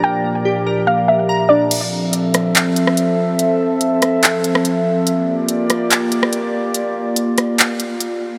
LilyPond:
<<
  \new Staff \with { instrumentName = "Synth pluck" } { \time 4/4 \key f \major \tempo 4 = 143 g''4 r4 f''8 e''4 d''8 | r1 | r1 | r1 |
r1 | }
  \new Staff \with { instrumentName = "Ambient pad" } { \time 4/4 \key f \major <bes, f g' d''>1 | <f c' a' e''>1~ | <f c' a' e''>1 | <bes f' g' d''>1~ |
<bes f' g' d''>1 | }
  \new Staff \with { instrumentName = "Synth keys" } { \time 4/4 \key f \major <bes d' bes' bes''>8 bes8 g'8 bes'8 bes8 bes8 bes''8 d'8 | r1 | r1 | r1 |
r1 | }
  \new DrumStaff \with { instrumentName = "Drums" } \drummode { \time 4/4 r4 r4 r4 r4 | <cymc hh>4 hh8 <hh ss>8 <hc hh>8 hh16 ss16 hh4 | hh4 hh8 <hh ss>8 <hc hh>8 hh16 ss16 hh4 | hh4 hh8 <hh ss>8 <hc hh>8 hh16 ss16 hh4 |
hh4 hh8 <hh ss>8 <hc hh>8 hh8 hh4 | }
>>